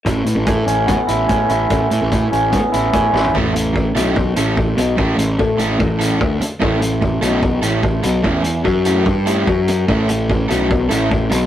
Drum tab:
HH |x-x-x-x-x-x-x-x-|x-x-x-x-x-x-x---|--x---x---x---x-|--x---x---x---x-|
SD |----------------|--------------o-|----------------|----------------|
FT |----------------|---------------o|----------------|----------------|
BD |o---o---o---o---|o---o---o---o---|o---o---o---o---|o---o---o---o---|

HH |--x---x---x---x-|--x---x---x---x-|--x---x---x---x-|
SD |----------------|----------------|----------------|
FT |----------------|----------------|----------------|
BD |o---o---o---o---|o---o---o---o---|o---o---o---o---|